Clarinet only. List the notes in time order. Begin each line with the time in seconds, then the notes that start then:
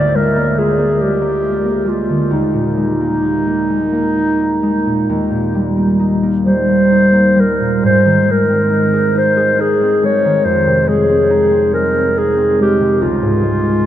Already playing: D5
0.16 A#4
0.58 G#4
1.01 G4
1.89 F4
2.33 D#4
6.46 C5
7.40 A#4
7.86 C5
8.31 A#4
9.19 C5
9.61 G#4
10.05 C#5
10.45 C5
10.88 G#4
11.74 A#4
12.18 G#4
12.62 G4
13.02 F4